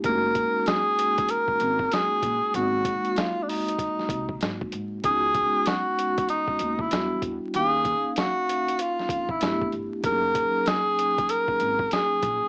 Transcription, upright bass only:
X:1
M:4/4
L:1/16
Q:"Swing 16ths" 1/4=96
K:Gb
V:1 name="Upright bass" clef=bass
G,,,3 z6 z A,,,2 z2 B,,, z | A,,,3 z6 z =C,,2 A,,2 A,,2 | D,,3 z6 z E,,2 =E,,2 E,, z | E,,3 z6 z F,,2 =G,,,2 G,,, z |
G,,,3 z6 z A,,,2 z2 B,,, z |]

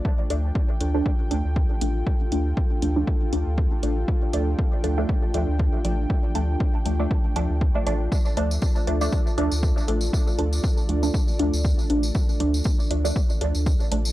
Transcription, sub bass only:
X:1
M:4/4
L:1/16
Q:"Swing 16ths" 1/4=119
K:Dm
V:1 name="Sub bass" clef=bass
z2 D,,2 z2 D,,2 z2 D,, D,,2 z A,,,2 | z2 D,,2 z2 D,,2 z2 D,, D,,2 z A,,,2 | z2 D,,2 z2 D,,2 z2 D,, D,,2 z A,,,2 | z2 D,,2 z2 D,,2 z2 D,, D,,2 z A,,,2 |
z2 D,,2 z2 D,,2 z2 D,, D,,2 z A,,,2 | z2 D,,2 z2 D,,2 z2 D,, D,,2 z A,,,2 | z2 D,,2 z2 D,,2 z2 D,, D,,2 z A,,,2 |]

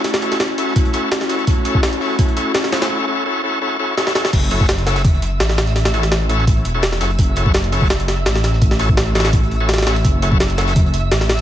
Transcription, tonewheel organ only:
X:1
M:4/4
L:1/16
Q:1/4=168
K:F#m
V:1 name="Tonewheel organ"
z2 [CEFA]2 z2 [CEFA]2 z2 [CEFA]2 z2 [CEFA]2 | z2 [CEFA]2 z2 [CEFA]2 z2 [CEFA]2 z2 [CEFA]2 | [CEFA]2 [CEFA]2 [CEFA]2 [CEFA]2 [CEFA]2 [CEFA]2 [CEFA]2 [CEFA]2 | z2 [CEFA]2 z2 [CEFA]2 z8 |
z2 [CEFA] z3 [CEFA]2 z3 [CEFA] z2 [CEFA] z | z2 [CEFA]2 z2 [CEFA]2 z8 | z2 [CEFA] z3 [CEFA]2 z3 [CEFA] z2 [CEFA] z | z2 [CEFA]2 z2 [CEFA]2 z8 |]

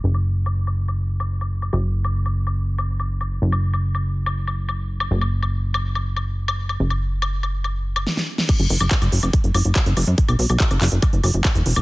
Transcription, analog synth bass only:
X:1
M:4/4
L:1/16
Q:1/4=142
K:none
V:1 name="Analog synth bass" clef=bass
^F,,,16 | ^F,,,16 | ^F,,,16 | ^F,,,16 |
^F,,,12 z4 | z ^F,,, F,,, F,,, z F,,, F,,, F,,, z F,,, F,,, F,,, z F,,, F,,, ^F,, | z B,,, B,,, B,,, z ^F,,, F,,, F,,, z F,,, F,,, F,,, z E,,, E,,, E,,, |]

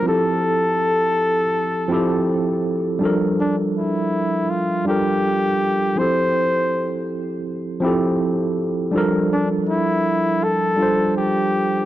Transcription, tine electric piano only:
X:1
M:4/4
L:1/8
Q:"Swing 16ths" 1/4=81
K:Gdor
V:1 name="Tine electric piano"
[F,CEGA]4 z [F,CEGA]3 | [F,G,DAB]4 z [G,DFAB]3 | [F,CEGA]4 z [F,CEGA]3 | [F,G,DAB]4 z [G,DFAc]3 |]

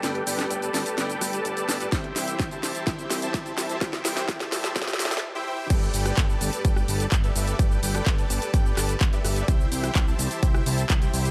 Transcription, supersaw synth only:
X:1
M:4/4
L:1/16
Q:1/4=127
K:G
V:1 name="Supersaw synth"
[GABdg]2 [GABdg]3 [GABda]3 [GABdg]3 [GABda]4 [GABda] | [EGceg]2 [EGceg]3 [EGcea]3 [EGceg]3 [EGcea]4 [EGcea] | [EGceg]2 [EGceg]3 [EGcea]3 [EGceg]2 [EGcea] z2 [EGceg] [EGceg]2 | [GABdg]2 [GABdg]3 [GABda]3 [GABdg]2 [GABda] z2 [GABde] [GABde]2 |
[GABdg]2 [GABdg]3 [GABda]3 [GABdg]2 [GABda] z2 [GABde] [GABde]2 | [EGceg]2 [EGceg]3 [EGcea]3 [EGceg]2 [EGcea] z2 [EGceg] [EGceg]2 |]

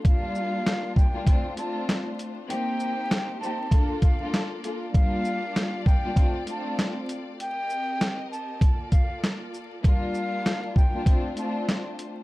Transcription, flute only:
X:1
M:4/4
L:1/8
Q:"Swing 16ths" 1/4=98
K:Cdor
V:1 name="Flute"
f3 g2 a z2 | g3 a2 f z2 | f3 g2 a z2 | g3 a2 f z2 |
f3 g2 a z2 |]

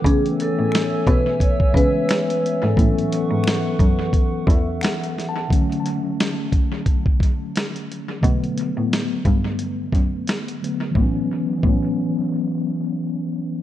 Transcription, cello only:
X:1
M:4/4
L:1/16
Q:"Swing 16ths" 1/4=88
K:A
V:1 name="Cello" clef=bass
C,3 A,, z2 B,,4 C,2 z3 G,, | A,,3 G,, z2 F,,4 E,,2 z4 | z16 | B,,3 A,, z2 =G,,4 F,,2 z4 |
A,, z3 A,,12 |]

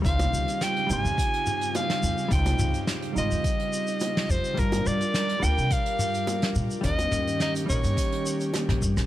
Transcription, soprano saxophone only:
X:1
M:4/4
L:1/8
Q:"Swing 16ths" 1/4=106
K:Dblyd
V:1 name="Soprano saxophone"
f2 g a3 f2 | g2 z e4 c | B =d2 g f3 z | e2 e d3 z2 |]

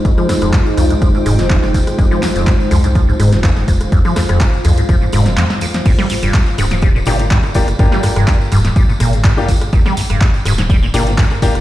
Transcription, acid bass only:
X:1
M:4/4
L:1/16
Q:"Swing 16ths" 1/4=124
K:Gphr
V:1 name="Acid bass" clef=bass
F,, F, F,, F,, G,, z F,, G,, F, A,, A,, F,, F,, z F,, z | F,, F, F,, F,, G,, z F,, G,, F, A,, A,, F,, F,, z F,, z | F,, F, F,, F,, G,, z F,, G,, F, A,, A,, F,, F,, z F,, z | G,, G, G,, G,, A,, z G,, A,, G, B,, B,, G,, G,, z G,, z |
G,, G, G,, G,, A,, z G,, A,, G, B,, B,, G,, G,, z G,, z | G,, G, G,, G,, A,, z G,, A,, G, B,, B,, G,, G,, z G,, z |]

